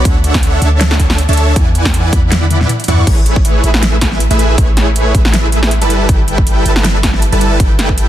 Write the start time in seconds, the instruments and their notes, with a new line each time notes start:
0.05 808-style bass D2, supersaw synth D4 A4 F#5, kick, closed hi-hat
0.24 closed hi-hat
0.34 kick, snare
0.43 closed hi-hat
0.62 808-style bass D2, supersaw synth D4 A4 C#5 E5 A5, closed hi-hat
0.81 snare, closed hi-hat
0.91 snare
1.00 kick, closed hi-hat
1.10 snare
1.18 closed hi-hat
1.29 808-style bass D2, supersaw synth D4 A4 C#5 E5 A5, closed hi-hat
1.33 closed hi-hat
1.37 closed hi-hat
1.56 808-style bass E2, supersaw synth E3 E4, kick, closed hi-hat
1.75 closed hi-hat
1.85 kick, snare
1.94 closed hi-hat
2.13 808-style bass E2, supersaw synth E3 E4 D5 F#5, kick, closed hi-hat
2.32 snare, closed hi-hat, high tom
2.42 high tom
2.51 closed hi-hat, high tom
2.61 snare, mid tom
2.69 closed hi-hat, mid tom
2.80 closed hi-hat
2.84 closed hi-hat
2.88 808-style bass E2, supersaw synth E3 E4 D5 F#5 C#6, closed hi-hat, mid tom
2.99 mid tom
3.07 808-style bass A1, supersaw synth A3 E4 G#4 B4 C#5, kick, closed hi-hat, crash
3.26 closed hi-hat
3.36 kick
3.45 closed hi-hat
3.64 808-style bass A1, supersaw synth A3 E4 G#4 B4 E5, closed hi-hat
3.74 snare
3.83 snare, closed hi-hat
4.01 kick, snare, closed hi-hat
4.12 snare
4.20 closed hi-hat
4.31 808-style bass A1, supersaw synth A3 E4 G#4 B4 E5, closed hi-hat
4.39 closed hi-hat
4.58 808-style bass A1, kick, closed hi-hat
4.77 snare, closed hi-hat
4.96 closed hi-hat
5.15 808-style bass A1, supersaw synth E4 B4, kick, closed hi-hat
5.25 snare
5.34 snare, closed hi-hat
5.52 closed hi-hat
5.63 snare
5.71 closed hi-hat
5.82 808-style bass G1, supersaw synth G3 E4 A4 B4 A5, closed hi-hat
5.90 closed hi-hat
6.09 808-style bass G1, supersaw synth G3 E4 B4 G5, kick, closed hi-hat
6.28 closed hi-hat
6.38 kick
6.47 closed hi-hat
6.66 808-style bass G1, supersaw synth G3 E4 A4 B4 A5, closed hi-hat
6.76 snare
6.84 snare, closed hi-hat
7.03 kick, snare, closed hi-hat
7.14 snare
7.22 closed hi-hat
7.32 808-style bass G1, supersaw synth G3 E4 A4 B4 A5, closed hi-hat
7.41 closed hi-hat
7.60 808-style bass G1, kick, closed hi-hat
7.79 snare, closed hi-hat
7.89 kick
7.98 closed hi-hat